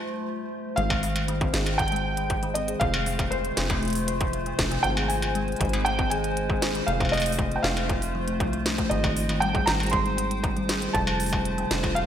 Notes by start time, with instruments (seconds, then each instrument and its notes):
Already playing: synth texture G3 G6, ambient pad A3 F4 C5, felt piano A5
0.76 acid bass G#1, kalimba G#3, ambient pad G#3 C5 G5, felt piano F5, closed hi-hat
0.90 kick, struck metal
1.03 kalimba D#3, open hi-hat
1.16 closed hi-hat, struck metal
1.28 kalimba D#3, closed hi-hat
1.41 kalimba C4, kick, closed hi-hat
1.54 acid bass G#1, kalimba G#4, snare, closed hi-hat
1.66 closed hi-hat, struck metal
1.78 felt piano G5, kick, closed hi-hat
1.88 kalimba G#3, closed hi-hat
1.92 closed hi-hat
1.96 closed hi-hat
2.17 kalimba D#3, closed hi-hat
2.30 kick, closed hi-hat
2.43 kalimba D#3, closed hi-hat
2.54 kalimba C4, felt piano D#5, closed hi-hat
2.68 kalimba G#4, closed hi-hat
2.80 acid bass F1, ambient pad A3 F4, felt piano F5, kick, closed hi-hat
2.94 closed hi-hat, struck metal
3.06 kalimba F3, open hi-hat
3.19 kick, closed hi-hat, struck metal
3.31 kalimba C3, felt piano C5, closed hi-hat
3.45 closed hi-hat
3.57 acid bass F1, kalimba C3, snare, closed hi-hat
3.70 kalimba A3, kick, closed hi-hat, struck metal
3.83 kalimba F4, closed hi-hat
3.85 closed hi-hat
3.88 closed hi-hat
3.90 closed hi-hat
3.93 closed hi-hat, open hi-hat
4.08 closed hi-hat
4.21 kalimba F3, kick, closed hi-hat
4.33 closed hi-hat
4.46 kalimba C3, closed hi-hat
4.59 acid bass F1, kick, snare, closed hi-hat
4.71 kalimba C3, closed hi-hat
4.83 acid bass G#1, ambient pad G#3 G#5, kalimba C4, felt piano G5, closed hi-hat
4.97 kalimba G#4, closed hi-hat, struck metal
5.08 felt piano G#5, open hi-hat
5.22 closed hi-hat, struck metal
5.35 kalimba G#3, closed hi-hat
5.48 closed hi-hat
5.52 closed hi-hat
5.56 closed hi-hat
5.61 acid bass G#1, kalimba D#3, kick, closed hi-hat
5.65 closed hi-hat
5.69 closed hi-hat
5.73 closed hi-hat, struck metal
5.85 kalimba D#3, felt piano G5, closed hi-hat
5.99 kalimba C4, kick, closed hi-hat
6.10 kalimba G#4, felt piano G#5, closed hi-hat
6.24 closed hi-hat
6.37 closed hi-hat
6.50 kalimba G#3, kick
6.62 snare, closed hi-hat
6.75 kalimba D#3, closed hi-hat
6.87 acid bass F1, ambient pad A3 F4, felt piano F5, closed hi-hat
7.00 kalimba C3, kick, closed hi-hat, struck metal
7.05 struck metal
7.09 felt piano D#5, struck metal
7.13 kalimba A3, open hi-hat, struck metal
7.17 open hi-hat, struck metal
7.22 struck metal
7.26 kalimba F4, closed hi-hat, open hi-hat
7.32 open hi-hat
7.39 kick, closed hi-hat
7.51 closed hi-hat
7.56 felt piano G5
7.63 acid bass F1, kalimba F3, felt piano F5, snare
7.77 closed hi-hat, struck metal
7.89 kalimba C3, kick, closed hi-hat
8.02 open hi-hat
8.15 kalimba F3
8.28 kalimba A3, closed hi-hat
8.40 acid bass C2, kalimba F3, kick, closed hi-hat
8.53 kalimba F3, closed hi-hat
8.66 snare, closed hi-hat
8.78 kalimba A3, kick, closed hi-hat
8.90 acid bass G#1, ambient pad C5 G5, felt piano D#5, closed hi-hat
9.04 kalimba D#3, kick, closed hi-hat, struck metal
9.16 open hi-hat
9.29 kalimba D#3, closed hi-hat, struck metal
9.40 kalimba G3, felt piano G5, closed hi-hat
9.55 kalimba G#4, kick, closed hi-hat
9.66 acid bass G#1, felt piano A#5, snare, closed hi-hat
9.80 closed hi-hat, struck metal
9.83 closed hi-hat
9.86 closed hi-hat
9.90 felt piano C6, kick, closed hi-hat
9.93 kalimba G#3, closed hi-hat
10.06 closed hi-hat
10.18 kalimba D#3, closed hi-hat
10.31 closed hi-hat
10.44 kalimba D#3, kick, closed hi-hat
10.56 kalimba G3, closed hi-hat
10.69 kalimba G#4, snare, closed hi-hat
10.82 closed hi-hat
10.93 acid bass F1, ambient pad A3 F4, felt piano A5, kick, closed hi-hat
11.07 kalimba F3, closed hi-hat, struck metal
11.20 open hi-hat
11.23 open hi-hat
11.26 open hi-hat
11.29 kalimba C3, kick, open hi-hat, struck metal
11.45 closed hi-hat
11.58 kalimba C3, closed hi-hat
11.71 acid bass F1, kalimba D#3, snare, closed hi-hat
11.83 kalimba F4, kick, closed hi-hat, struck metal
11.95 felt piano F5, closed hi-hat